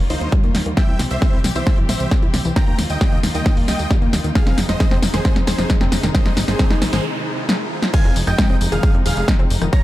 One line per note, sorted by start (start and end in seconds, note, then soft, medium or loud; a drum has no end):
0.00 0.74 D#3 medium
0.00 2.53 G3 medium
0.00 0.75 A#3 medium
0.00 0.76 F4 medium
0.10 0.17 C#2 loud
0.10 0.31 D#4 medium
0.10 0.31 C5 medium
0.10 open hi-hat loud
0.21 0.28 D#2 medium
0.21 closed hi-hat soft
0.32 0.43 G3 loud
0.32 kick loud
0.32 closed hi-hat soft
0.44 0.51 D#2 medium
0.44 0.50 A#3 medium
0.44 closed hi-hat soft
0.55 0.62 D#2 loud
0.55 snare medium
0.55 open hi-hat loud
0.66 0.73 D#2 medium
0.66 0.73 D#3 medium
0.66 closed hi-hat medium
0.77 2.55 E3 medium
0.77 0.81 E3 medium
0.77 2.55 C4 medium
0.77 2.55 G4 medium
0.77 0.99 E5 medium
0.77 0.99 G5 loud
0.77 kick loud
0.77 snare medium
0.77 closed hi-hat soft
0.77 tambourine soft
0.77 riser medium
0.88 0.96 C2 medium
0.88 0.95 E4 medium
0.88 closed hi-hat soft
0.99 1.07 C2 medium
0.99 snare medium
0.99 open hi-hat loud
0.99 tambourine medium
1.11 1.18 C2 medium
1.11 1.39 C5 medium
1.11 1.39 E5 medium
1.11 closed hi-hat medium
1.11 tambourine soft
1.22 1.32 C4 loud
1.22 kick loud
1.22 snare medium
1.22 closed hi-hat soft
1.22 tambourine soft
1.33 1.40 C2 medium
1.33 1.40 E4 loud
1.33 closed hi-hat soft
1.44 1.52 C2 loud
1.44 snare medium
1.44 open hi-hat loud
1.44 tambourine medium
1.55 1.63 C2 medium
1.55 1.62 E3 medium
1.55 1.77 C5 medium
1.55 1.77 E5 medium
1.55 closed hi-hat medium
1.55 tambourine soft
1.67 1.71 E3 medium
1.67 kick loud
1.67 snare medium
1.67 closed hi-hat soft
1.67 tambourine soft
1.78 1.85 G1 medium
1.78 1.85 E4 medium
1.78 closed hi-hat soft
1.89 1.96 A#1 loud
1.89 2.11 C5 medium
1.89 2.11 E5 loud
1.89 snare medium
1.89 open hi-hat loud
1.89 tambourine medium
2.00 2.08 C2 medium
2.00 closed hi-hat soft
2.00 tambourine soft
2.11 2.22 C4 loud
2.11 kick loud
2.11 snare medium
2.11 closed hi-hat soft
2.11 tambourine soft
2.23 2.30 C2 medium
2.23 2.29 E4 loud
2.23 closed hi-hat soft
2.34 2.41 C2 loud
2.34 snare medium
2.34 open hi-hat loud
2.34 tambourine medium
2.45 2.53 C2 medium
2.45 2.52 E3 loud
2.45 closed hi-hat medium
2.45 tambourine soft
2.56 2.60 D#3 medium
2.56 4.34 D#3 medium
2.56 4.34 G3 medium
2.56 4.34 A#3 medium
2.56 4.34 F4 medium
2.56 2.78 G5 medium
2.56 2.78 A#5 loud
2.56 kick loud
2.56 snare medium
2.56 closed hi-hat medium
2.56 tambourine soft
2.67 2.75 D#2 medium
2.67 2.74 A#3 medium
2.67 closed hi-hat soft
2.79 2.86 D#2 medium
2.79 snare medium
2.79 open hi-hat loud
2.79 tambourine medium
2.90 2.97 D#2 medium
2.90 3.19 D#5 medium
2.90 3.19 G5 loud
2.90 closed hi-hat medium
2.90 tambourine soft
3.01 3.11 G3 loud
3.01 kick loud
3.01 snare medium
3.01 closed hi-hat medium
3.01 tambourine soft
3.12 3.20 D#2 medium
3.12 3.19 A#3 loud
3.12 closed hi-hat soft
3.23 3.31 D#2 loud
3.23 snare medium
3.23 open hi-hat loud
3.23 tambourine medium
3.35 3.42 D#2 medium
3.35 3.41 D#3 loud
3.35 3.56 D#5 medium
3.35 3.56 G5 medium
3.35 closed hi-hat medium
3.35 tambourine soft
3.46 3.50 D#3 medium
3.46 kick loud
3.46 snare medium
3.46 closed hi-hat soft
3.46 tambourine soft
3.57 3.64 D#1 medium
3.57 3.64 A#3 medium
3.57 open hi-hat medium
3.68 3.76 C#2 loud
3.68 3.90 D#5 medium
3.68 3.90 G5 loud
3.68 snare medium
3.68 open hi-hat loud
3.68 tambourine medium
3.79 3.87 D#2 medium
3.79 closed hi-hat medium
3.79 tambourine soft
3.91 4.01 G3 loud
3.91 kick loud
3.91 snare medium
3.91 closed hi-hat medium
3.91 tambourine soft
4.02 4.09 D#2 medium
4.02 4.08 A#3 loud
4.02 closed hi-hat soft
4.13 4.20 D#2 loud
4.13 snare medium
4.13 open hi-hat loud
4.13 tambourine medium
4.24 4.32 D#2 medium
4.24 4.31 D#3 medium
4.24 closed hi-hat medium
4.24 tambourine soft
4.35 7.90 C3 medium
4.35 4.39 D#3 medium
4.35 6.13 F3 medium
4.35 7.90 G#3 medium
4.35 7.90 D#4 medium
4.35 4.57 G#4 medium
4.35 4.57 F5 loud
4.35 kick loud
4.35 snare medium
4.35 closed hi-hat medium
4.35 tambourine soft
4.47 4.54 F1 medium
4.47 4.53 C4 medium
4.47 snare medium
4.47 closed hi-hat soft
4.58 4.65 F1 medium
4.58 snare medium
4.58 open hi-hat loud
4.58 tambourine medium
4.69 4.76 F1 medium
4.69 4.97 C5 medium
4.69 4.97 D#5 medium
4.69 snare medium
4.69 closed hi-hat medium
4.69 tambourine soft
4.80 4.90 G#3 loud
4.80 kick loud
4.80 snare medium
4.80 closed hi-hat medium
4.80 tambourine soft
4.91 4.99 F1 medium
4.91 4.98 C4 loud
4.91 snare medium
4.91 closed hi-hat soft
5.02 5.10 F1 loud
5.02 snare loud
5.02 open hi-hat loud
5.02 tambourine medium
5.14 5.21 F1 medium
5.14 5.20 D#3 loud
5.14 5.35 G#4 medium
5.14 5.35 C5 medium
5.14 snare medium
5.14 closed hi-hat medium
5.14 tambourine soft
5.25 5.29 D#3 medium
5.25 kick loud
5.25 snare medium
5.25 closed hi-hat medium
5.25 tambourine soft
5.36 5.44 F2 medium
5.36 5.43 C4 medium
5.36 snare medium
5.36 closed hi-hat soft
5.47 5.55 D#1 loud
5.47 5.69 G#4 medium
5.47 5.69 C5 loud
5.47 snare loud
5.47 open hi-hat loud
5.47 tambourine medium
5.58 5.66 F1 medium
5.58 snare medium
5.58 closed hi-hat medium
5.58 tambourine soft
5.70 5.80 G#3 loud
5.70 kick loud
5.70 snare loud
5.70 closed hi-hat medium
5.70 tambourine soft
5.81 5.88 F1 medium
5.81 5.88 C4 loud
5.81 snare medium
5.81 closed hi-hat soft
5.92 5.99 F1 loud
5.92 snare loud
5.92 open hi-hat loud
5.92 tambourine medium
6.03 6.11 F1 medium
6.03 6.10 D#3 loud
6.03 snare medium
6.03 closed hi-hat medium
6.03 tambourine soft
6.15 6.19 D#3 medium
6.15 7.92 D#3 medium
6.15 6.36 C5 medium
6.15 6.36 D#5 loud
6.15 kick loud
6.15 snare loud
6.15 closed hi-hat medium
6.15 tambourine soft
6.15 noise sweep medium
6.26 6.33 G#1 medium
6.26 6.32 D#4 medium
6.26 snare medium
6.26 closed hi-hat soft
6.37 6.44 G#1 loud
6.37 snare loud
6.37 open hi-hat loud
6.37 tambourine medium
6.48 6.55 G#1 medium
6.48 6.77 G#4 medium
6.48 6.77 C5 medium
6.48 snare medium
6.48 closed hi-hat medium
6.48 tambourine soft
6.59 6.69 C4 loud
6.59 kick loud
6.59 snare loud
6.59 closed hi-hat medium
6.59 tambourine soft
6.70 6.78 G#1 medium
6.70 6.77 D#4 loud
6.70 snare medium
6.70 closed hi-hat soft
6.82 6.89 G#1 loud
6.82 snare loud
6.82 open hi-hat loud
6.82 tambourine medium
6.93 7.00 G#1 medium
6.93 7.00 D#3 loud
6.93 7.04 G#4 medium
6.93 7.04 C5 medium
6.93 snare loud
6.93 closed hi-hat medium
6.93 tambourine soft
7.49 snare loud
7.82 snare medium
7.94 9.71 C3 medium
7.94 7.98 D#3 medium
7.94 9.71 F3 medium
7.94 9.71 G#3 medium
7.94 9.71 D#4 medium
7.94 8.15 F5 medium
7.94 8.15 G#5 loud
7.94 8.15 G#6 loud
7.94 kick loud
7.94 closed hi-hat medium
7.94 crash loud
7.94 tambourine soft
8.05 8.12 F1 medium
8.05 8.12 C4 medium
8.05 closed hi-hat soft
8.16 8.23 F1 loud
8.16 open hi-hat loud
8.16 tambourine medium
8.27 8.35 F1 medium
8.27 8.56 D#5 medium
8.27 8.56 G5 medium
8.27 8.56 G6 medium
8.27 cross-stick medium
8.27 closed hi-hat medium
8.27 tambourine soft
8.38 8.48 G#3 loud
8.38 kick loud
8.38 snare loud
8.38 closed hi-hat medium
8.38 tambourine soft
8.50 8.57 F1 medium
8.50 8.56 C4 loud
8.50 closed hi-hat soft
8.61 8.68 F1 loud
8.61 open hi-hat loud
8.61 tambourine medium
8.72 8.79 F1 medium
8.72 8.79 D#3 loud
8.72 8.93 G#4 medium
8.72 8.93 F5 loud
8.72 8.93 F6 medium
8.72 closed hi-hat medium
8.72 tambourine soft
8.83 kick loud
8.83 closed hi-hat medium
8.83 tambourine soft
8.94 9.02 F2 medium
8.94 9.01 C4 medium
8.94 closed hi-hat soft
9.05 9.13 D#1 loud
9.05 9.27 G#4 medium
9.05 9.27 F5 loud
9.05 9.27 F6 medium
9.05 open hi-hat loud
9.05 tambourine medium
9.17 9.24 F1 loud
9.17 closed hi-hat medium
9.17 tambourine soft
9.28 9.38 G#3 loud
9.28 kick loud
9.28 snare loud
9.28 closed hi-hat medium
9.28 tambourine soft
9.39 9.47 F1 medium
9.39 9.46 C4 loud
9.39 closed hi-hat soft
9.50 9.58 F1 loud
9.50 open hi-hat medium
9.50 tambourine medium
9.62 9.69 F1 loud
9.62 9.68 D#3 loud
9.62 cross-stick medium
9.62 closed hi-hat medium
9.62 tambourine soft
9.73 9.83 C#3 medium
9.73 9.77 F3 medium
9.73 9.83 G#3 medium
9.73 9.83 A#3 medium
9.73 9.83 F4 medium
9.73 9.83 C#5 medium
9.73 9.83 A#5 loud
9.73 9.83 A#6 loud
9.73 kick loud
9.73 closed hi-hat medium
9.73 tambourine soft